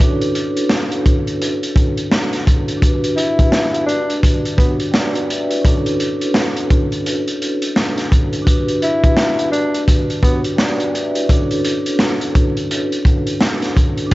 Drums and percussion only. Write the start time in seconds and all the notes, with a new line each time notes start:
0.00 kick, closed hi-hat
0.21 closed hi-hat
0.35 closed hi-hat
0.57 closed hi-hat
0.69 snare
0.92 closed hi-hat
1.06 kick, closed hi-hat
1.27 closed hi-hat
1.42 closed hi-hat
1.63 closed hi-hat
1.76 kick, closed hi-hat
1.97 closed hi-hat
2.11 snare
2.33 snare, closed hi-hat
2.47 kick, closed hi-hat
2.68 closed hi-hat
2.82 kick, closed hi-hat
3.04 closed hi-hat
3.18 closed hi-hat
3.39 kick, closed hi-hat
3.52 snare
3.74 closed hi-hat
3.89 closed hi-hat
4.10 closed hi-hat
4.23 kick, closed hi-hat
4.45 closed hi-hat
4.58 kick, closed hi-hat
4.80 closed hi-hat
4.94 snare
5.15 closed hi-hat
5.30 closed hi-hat
5.51 closed hi-hat
5.65 kick, closed hi-hat
5.86 closed hi-hat
6.00 closed hi-hat
6.21 closed hi-hat
6.34 snare
6.57 closed hi-hat
6.70 kick, closed hi-hat
6.92 closed hi-hat
7.06 closed hi-hat
7.28 closed hi-hat
7.42 closed hi-hat
7.62 closed hi-hat
7.76 snare
7.98 snare, closed hi-hat
8.12 kick, closed hi-hat
8.33 closed hi-hat
8.47 kick, closed hi-hat
8.68 closed hi-hat
8.82 closed hi-hat
9.04 kick, closed hi-hat
9.17 snare
9.39 closed hi-hat
9.53 closed hi-hat
9.74 closed hi-hat
9.88 kick, closed hi-hat
10.10 closed hi-hat
10.23 kick, closed hi-hat
10.44 closed hi-hat
10.58 snare
10.80 closed hi-hat
10.95 closed hi-hat
11.15 closed hi-hat
11.29 kick, closed hi-hat
11.51 closed hi-hat
11.65 closed hi-hat
11.86 closed hi-hat
11.99 snare
12.21 closed hi-hat
12.35 kick, closed hi-hat
12.57 closed hi-hat
12.71 closed hi-hat
12.92 closed hi-hat
13.05 kick, closed hi-hat
13.27 closed hi-hat
13.41 snare
13.62 snare, closed hi-hat
13.77 kick, closed hi-hat
13.97 closed hi-hat